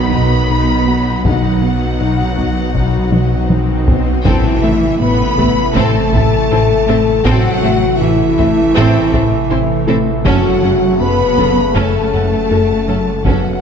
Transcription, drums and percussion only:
0.13 taiko low
1.25 taiko
2.38 taiko low
2.75 taiko
3.12 taiko high
3.50 taiko high
3.88 taiko low
4.25 taiko
5.38 taiko low
5.75 taiko
6.13 taiko low
7.25 taiko
8.38 taiko low
8.76 taiko
9.13 taiko low
10.25 taiko
11.38 taiko low
11.76 taiko
12.13 taiko low
13.25 taiko

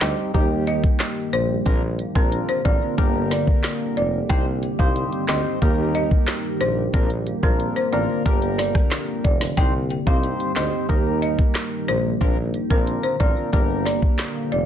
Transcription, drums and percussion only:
0.01 snare, clap, closed hi-hat
0.34 kick, closed hi-hat
0.67 closed hi-hat
0.84 kick
1.00 snare, clap, closed hi-hat
1.33 closed hi-hat
1.66 kick, closed hi-hat
1.99 closed hi-hat
2.15 kick
2.32 closed hi-hat
2.49 closed hi-hat
2.65 kick, closed hi-hat
2.98 kick, closed hi-hat
3.31 snare, closed hi-hat
3.47 kick
3.64 snare, clap, closed hi-hat
3.97 closed hi-hat
4.30 kick, closed hi-hat
4.63 closed hi-hat
4.79 kick
4.96 closed hi-hat
5.13 closed hi-hat
5.28 snare, clap, closed hi-hat
5.62 kick, closed hi-hat
5.95 closed hi-hat
6.11 kick
6.27 snare, clap, closed hi-hat
6.61 closed hi-hat
6.94 kick, closed hi-hat
7.10 closed hi-hat
7.27 closed hi-hat
7.43 kick
7.60 closed hi-hat
7.76 closed hi-hat
7.93 closed hi-hat
8.26 kick, closed hi-hat
8.42 closed hi-hat
8.59 snare, closed hi-hat
8.75 kick, cross-stick
8.91 snare, clap, closed hi-hat
9.25 kick, closed hi-hat
9.41 snare
9.58 kick, closed hi-hat
9.90 closed hi-hat
10.07 kick
10.24 closed hi-hat
10.40 closed hi-hat
10.56 snare, clap, closed hi-hat
10.89 kick, closed hi-hat
11.22 closed hi-hat
11.39 kick
11.55 snare, clap, closed hi-hat
11.88 closed hi-hat
12.21 kick, closed hi-hat
12.54 closed hi-hat
12.70 kick
12.87 closed hi-hat
13.04 closed hi-hat
13.20 kick, closed hi-hat
13.53 kick, closed hi-hat
13.86 snare, closed hi-hat
14.02 kick
14.19 snare, clap, closed hi-hat
14.52 closed hi-hat

